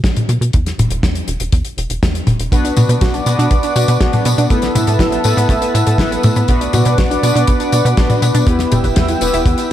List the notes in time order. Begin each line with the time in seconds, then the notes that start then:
0.04 B1, kick, snare, closed hi-hat
0.16 closed hi-hat, high tom
0.29 B2, closed hi-hat
0.41 B2, closed hi-hat
0.53 E2, kick, closed hi-hat
0.66 snare, closed hi-hat
0.78 E1, closed hi-hat, high tom
0.91 E1, closed hi-hat
1.03 E2, kick, snare, closed hi-hat
1.15 closed hi-hat
1.28 E1, closed hi-hat
1.40 E1, closed hi-hat
1.52 E2, kick, closed hi-hat
1.65 closed hi-hat
1.77 E1, closed hi-hat
1.90 E1, closed hi-hat
2.03 E2, kick, snare, closed hi-hat
2.15 closed hi-hat
2.27 E1, closed hi-hat, high tom
2.39 E1, closed hi-hat
2.52 B1 B3 D4 F#4 B4 D5 F#5 D6, kick, closed hi-hat, tambourine
2.64 D4, closed hi-hat, tambourine
2.77 B2 F#4, closed hi-hat, high tom, tambourine
2.89 B2 B4, closed hi-hat, tambourine
3.01 B1 F#4, kick, snare, closed hi-hat, tambourine
3.14 D4, closed hi-hat, tambourine
3.26 B2 B3 D4 F#4 B4, closed hi-hat, tambourine
3.39 B2 D4, closed hi-hat, tambourine
3.51 B1 B3, kick, closed hi-hat, tambourine
3.63 D4, closed hi-hat, tambourine
3.76 B2 F#4, closed hi-hat, tambourine
3.88 B2 B4, closed hi-hat, tambourine
4.01 B1 B3 D4 F#4 B4, kick, snare, closed hi-hat
4.13 D4, closed hi-hat, high tom, tambourine
4.25 B2 B3, closed hi-hat, tambourine
4.38 B2 D4, closed hi-hat, tambourine
4.50 A1 A3 B3 E4 A4 B4 E5 A5 E6, kick, closed hi-hat, tambourine
4.62 B3, snare, closed hi-hat, tambourine
4.75 A2 E4, closed hi-hat, high tom, tambourine
4.87 A2 A4, closed hi-hat, tambourine
4.99 A1 E4, kick, snare, closed hi-hat, tambourine
5.12 B3, closed hi-hat, tambourine
5.24 A2 A3 B3 E4 A4 B4, closed hi-hat, tambourine
5.37 A2 B3, closed hi-hat, tambourine
5.49 A1 A3, kick, closed hi-hat, tambourine
5.62 B3, closed hi-hat, tambourine
5.74 A2 E4, closed hi-hat, tambourine
5.87 A2 A4, closed hi-hat, tambourine
5.98 A1 B3 E4 A4 B4, kick, snare, closed hi-hat, tambourine
6.11 B3, closed hi-hat, tambourine
6.23 A2 A3, closed hi-hat, high tom, tambourine
6.36 A2 B3, closed hi-hat, tambourine
6.48 B1 B3 D4 F#4 B4 D5 F#5 D6, kick, closed hi-hat, tambourine
6.61 D4, closed hi-hat, tambourine
6.73 B2 F#4, closed hi-hat, high tom, tambourine
6.85 B2 B4, closed hi-hat, tambourine
6.98 B1 F#4, kick, snare, closed hi-hat, tambourine
7.11 D4, closed hi-hat, tambourine
7.23 B2 B3 D4 F#4 B4, closed hi-hat, tambourine
7.35 B2 D4, closed hi-hat, tambourine
7.47 B1 B3, kick, closed hi-hat, tambourine
7.60 D4, closed hi-hat, tambourine
7.72 B2 F#4, closed hi-hat, tambourine
7.85 B2 B4, closed hi-hat, tambourine
7.97 B1 B3 D4 F#4 B4, kick, snare, closed hi-hat, tambourine
8.10 D4, closed hi-hat, high tom, tambourine
8.22 B2 B3, closed hi-hat, tambourine
8.34 B2 D4, closed hi-hat, tambourine
8.46 E2 B3 E4 G4 B4 E5 G5 E6, kick, closed hi-hat, tambourine
8.59 E4, snare, closed hi-hat, tambourine
8.72 E1 G4, closed hi-hat, high tom, tambourine
8.84 E1 B4, kick, closed hi-hat, tambourine
8.96 E2 G4, kick, snare, closed hi-hat, tambourine
9.08 E4, closed hi-hat, tambourine
9.21 E1 B3 E4 G4 B4, closed hi-hat, tambourine
9.33 E1 E4, closed hi-hat, tambourine
9.46 E2 B3, kick, closed hi-hat, tambourine
9.58 E4, closed hi-hat, tambourine